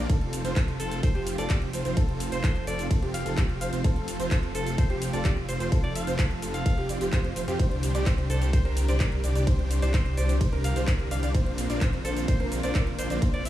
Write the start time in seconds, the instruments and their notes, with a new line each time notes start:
Already playing: analog synth pad F4
0.09 detuned saw bass F1, analog synth pad C3 F3 A3, supersaw synth C4 F4 A4, grand piano A4, kick, closed hi-hat, ride, shaker
0.21 closed hi-hat
0.33 open hi-hat, shaker
0.45 detuned saw bass F1, supersaw synth C4 F4 C5, grand piano C5, closed hi-hat, shaker
0.56 detuned saw bass F1, supersaw synth C4 F4 A4, grand piano A4, kick, clap, closed hi-hat, ride, shaker
0.68 closed hi-hat
0.80 detuned saw bass F1, supersaw synth C4 F4 A4, grand piano A4, alto saxophone A4, open hi-hat, shaker
0.91 closed hi-hat, shaker
1.03 detuned saw bass F1, supersaw synth C4 F4 A4, grand piano A4, alto saxophone C5, kick, closed hi-hat, ride, shaker
1.15 detuned saw bass F1, supersaw synth C4 F4 G4, grand piano G4, alto saxophone C5, closed hi-hat
1.27 open hi-hat, shaker
1.38 detuned saw bass F1, supersaw synth C4 F4 A4, grand piano A4, alto saxophone D5, closed hi-hat, shaker
1.50 detuned saw bass F1, supersaw synth C4 F4 G4, grand piano G4, kick, clap, closed hi-hat, ride, shaker
1.62 closed hi-hat
1.73 detuned saw bass F1, supersaw synth C4 F4 C5, grand piano C5, open hi-hat, shaker
1.85 detuned saw bass F1, supersaw synth C4 F4 C5, grand piano C5, closed hi-hat, shaker
1.97 detuned saw bass F1, supersaw synth C4 F4 A4, grand piano A4, kick, closed hi-hat, ride, shaker
2.09 closed hi-hat
2.20 open hi-hat, shaker
2.32 detuned saw bass F1, supersaw synth C4 F4 C5, alto saxophone C5, grand piano C5, closed hi-hat, shaker
2.44 detuned saw bass F1, supersaw synth C4 F4 A4, grand piano A4, kick, clap, closed hi-hat, ride, shaker
2.56 closed hi-hat
2.67 detuned saw bass F1, supersaw synth C4 F4 A4, grand piano A4, alto saxophone D5, open hi-hat, shaker
2.79 closed hi-hat, shaker
2.91 detuned saw bass F1, supersaw synth C4 F4 A4, grand piano A4, kick, closed hi-hat, ride, shaker
3.02 detuned saw bass F1, supersaw synth C4 F4 G4, grand piano G4, closed hi-hat
3.14 alto saxophone F5, open hi-hat, shaker
3.26 detuned saw bass F1, supersaw synth C4 F4 A4, grand piano A4, closed hi-hat, shaker
3.37 detuned saw bass F1, supersaw synth C4 F4 G4, grand piano G4, kick, clap, closed hi-hat, ride, shaker
3.49 closed hi-hat
3.61 detuned saw bass F1, supersaw synth C4 F4 C5, grand piano C5, alto saxophone F5, open hi-hat, shaker
3.73 detuned saw bass F1, supersaw synth C4 F4 C5, grand piano C5, alto saxophone F5, closed hi-hat, shaker
3.84 detuned saw bass F1, supersaw synth C4 F4 A4, grand piano A4, kick, closed hi-hat, ride, shaker
3.96 closed hi-hat
4.08 open hi-hat, shaker
4.20 detuned saw bass F1, supersaw synth C4 F4 C5, grand piano C5, closed hi-hat, shaker
4.31 detuned saw bass F1, supersaw synth C4 F4 A4, grand piano A4, kick, clap, closed hi-hat, ride, shaker
4.43 closed hi-hat
4.55 detuned saw bass F1, supersaw synth C4 F4 A4, alto saxophone A4, grand piano A4, open hi-hat, shaker
4.67 closed hi-hat, shaker
4.78 detuned saw bass F1, supersaw synth C4 F4 A4, grand piano A4, alto saxophone C5, kick, closed hi-hat, ride, shaker
4.90 detuned saw bass F1, supersaw synth C4 F4 G4, grand piano G4, alto saxophone C5, closed hi-hat
5.02 open hi-hat, shaker
5.13 detuned saw bass F1, supersaw synth C4 F4 A4, grand piano A4, alto saxophone D5, closed hi-hat, shaker
5.25 detuned saw bass F1, supersaw synth C4 F4 G4, grand piano G4, kick, clap, closed hi-hat, ride, shaker
5.37 closed hi-hat
5.49 detuned saw bass F1, supersaw synth C4 F4 C5, alto saxophone C5, grand piano C5, open hi-hat, shaker
5.60 detuned saw bass F1, supersaw synth C4 F4 C5, alto saxophone C5, grand piano C5, closed hi-hat, shaker
5.72 detuned saw bass F1, supersaw synth C4 F4 A4, grand piano A4, kick, closed hi-hat, ride, shaker
5.84 alto saxophone D5, closed hi-hat
5.96 alto saxophone F5, open hi-hat, shaker
6.07 detuned saw bass F1, supersaw synth C4 F4 C5, grand piano C5, closed hi-hat, shaker
6.19 detuned saw bass F1, supersaw synth C4 F4 A4, grand piano A4, kick, clap, closed hi-hat, ride, shaker
6.31 closed hi-hat
6.42 detuned saw bass F1, supersaw synth C4 F4 A4, grand piano A4, open hi-hat, shaker
6.54 alto saxophone F5, closed hi-hat, shaker
6.66 detuned saw bass F1, supersaw synth C4 F4 A4, grand piano A4, kick, closed hi-hat, ride, shaker
6.77 detuned saw bass F1, supersaw synth C4 F4 G4, grand piano G4, closed hi-hat
6.89 detuned saw bass F1, supersaw synth C4 F4 D5, grand piano D5, open hi-hat, shaker
7.01 detuned saw bass F1, supersaw synth C4 F4 G4, grand piano G4, closed hi-hat, shaker
7.12 detuned saw bass F2, supersaw synth C4 F4 C5, grand piano C5, kick, clap, closed hi-hat, ride, shaker
7.24 closed hi-hat
7.36 detuned saw bass F1, supersaw synth C4 F4 C5, grand piano C5, open hi-hat, shaker
7.48 detuned saw bass F2, supersaw synth C4 F4 G4, grand piano G4, closed hi-hat, shaker
7.59 detuned saw bass C2, analog synth pad D3 G3 C4 G4, supersaw synth D4 G4 C5, grand piano C5, kick, closed hi-hat, ride, shaker
7.71 closed hi-hat
7.83 open hi-hat, shaker
7.95 detuned saw bass C2, supersaw synth D4 G4 D5, grand piano D5, closed hi-hat, shaker
8.06 detuned saw bass C2, supersaw synth D4 G4 C5, grand piano C5, kick, clap, closed hi-hat, ride, shaker
8.18 closed hi-hat
8.30 detuned saw bass C2, supersaw synth D4 G4 C5, alto saxophone A4, grand piano C5, open hi-hat, shaker
8.42 closed hi-hat, shaker
8.53 detuned saw bass C2, supersaw synth D4 G4 C5, alto saxophone C5, grand piano C5, kick, closed hi-hat, ride, shaker
8.65 detuned saw bass C2, supersaw synth D4 G4 A#4, grand piano A#4, alto saxophone C5, closed hi-hat
8.77 open hi-hat, shaker
8.88 detuned saw bass C2, supersaw synth D4 G4 C5, grand piano C5, alto saxophone D5, closed hi-hat, shaker
9.00 detuned saw bass C2, supersaw synth D4 G4 A#4, grand piano A#4, kick, clap, closed hi-hat, ride, shaker
9.12 closed hi-hat
9.24 detuned saw bass C2, supersaw synth D4 G4 D5, grand piano D5, open hi-hat, shaker
9.35 detuned saw bass C2, supersaw synth D4 G4 D5, grand piano D5, closed hi-hat, shaker
9.47 detuned saw bass C2, supersaw synth D4 G4 C5, grand piano C5, kick, closed hi-hat, ride, shaker
9.59 closed hi-hat
9.71 open hi-hat, shaker
9.82 detuned saw bass C2, supersaw synth D4 G4 D5, alto saxophone C5, grand piano D5, closed hi-hat, shaker
9.94 detuned saw bass C2, supersaw synth D4 G4 C5, grand piano C5, kick, clap, closed hi-hat, ride, shaker
10.06 closed hi-hat
10.17 detuned saw bass C2, supersaw synth D4 G4 C5, grand piano C5, alto saxophone D5, open hi-hat, shaker
10.29 closed hi-hat, shaker
10.41 detuned saw bass C2, supersaw synth D4 G4 C5, grand piano C5, kick, closed hi-hat, ride, shaker
10.53 detuned saw bass C2, supersaw synth D4 G4 A#4, grand piano A#4, closed hi-hat
10.64 alto saxophone F5, open hi-hat, shaker
10.76 detuned saw bass C2, supersaw synth D4 G4 C5, grand piano C5, closed hi-hat, shaker
10.87 detuned saw bass C2, supersaw synth D4 G4 A#4, grand piano A#4, kick, clap, closed hi-hat, ride, shaker
10.99 closed hi-hat
11.11 detuned saw bass C2, supersaw synth D4 G4 D5, grand piano D5, alto saxophone F5, open hi-hat, shaker
11.23 detuned saw bass C2, supersaw synth D4 G4 D5, grand piano D5, alto saxophone F5, closed hi-hat, shaker
11.35 detuned saw bass A#1, supersaw synth A#3 C4 D4 F4 C5, analog synth pad A#3 F4, grand piano C5, kick, closed hi-hat, ride, shaker
11.46 closed hi-hat
11.58 open hi-hat, shaker
11.70 detuned saw bass A#1, supersaw synth A#3 C4 D4 F4 D5, grand piano D5, closed hi-hat, shaker
11.81 detuned saw bass A#1, supersaw synth A#3 C4 D4 F4 C5, grand piano C5, kick, clap, closed hi-hat, ride, shaker
11.93 closed hi-hat
12.05 detuned saw bass A#1, supersaw synth A#3 C4 D4 F4 C5, alto saxophone A4, grand piano C5, open hi-hat, shaker
12.17 closed hi-hat, shaker
12.28 detuned saw bass A#1, supersaw synth A#3 C4 D4 F4 C5, alto saxophone C5, grand piano C5, kick, closed hi-hat, ride, shaker
12.40 detuned saw bass A#1, supersaw synth A#3 C4 D4 F4 A#4, grand piano A#4, alto saxophone C5, closed hi-hat
12.52 open hi-hat, shaker
12.63 detuned saw bass A#1, supersaw synth A#3 C4 D4 F4 C5, grand piano C5, alto saxophone D5, closed hi-hat, shaker
12.75 detuned saw bass A#1, supersaw synth A#3 C4 D4 F4 A#4, grand piano A#4, kick, clap, closed hi-hat, ride, shaker
12.87 closed hi-hat
12.98 detuned saw bass A#1, supersaw synth A#3 C4 D4 F4 D5, alto saxophone C5, grand piano D5, open hi-hat, shaker
13.10 detuned saw bass A#1, supersaw synth A#3 C4 D4 F4 D5, alto saxophone C5, grand piano D5, closed hi-hat, shaker
13.22 detuned saw bass A#1, supersaw synth A#3 C4 D4 F4 C5, grand piano C5, kick, closed hi-hat, ride, shaker
13.34 alto saxophone D5, closed hi-hat
13.45 alto saxophone F5, open hi-hat, shaker